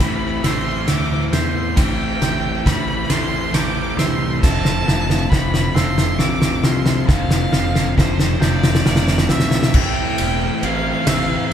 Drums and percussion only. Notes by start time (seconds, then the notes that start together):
0.00 kick, snare, ride
0.44 snare, ride
0.88 snare, ride
1.33 snare, ride
1.77 kick, snare, ride
2.22 snare, ride
2.66 kick, snare, ride
3.10 snare, ride
3.54 snare, ride
3.99 snare, ride
4.43 kick, snare, crash
4.65 snare
4.88 snare
5.10 snare
5.32 kick, snare
5.54 snare
5.76 snare
5.98 snare
6.19 snare
6.42 snare
6.64 snare
6.86 snare
7.09 kick, snare
7.31 snare
7.53 snare
7.75 snare
7.98 kick, snare
8.20 snare
8.42 snare
8.63 snare
8.75 snare
8.86 snare
8.96 snare
9.08 snare
9.18 snare
9.29 snare
9.40 snare
9.51 snare
9.63 snare
9.74 kick, crash
10.18 ride
10.63 ride
11.07 snare, ride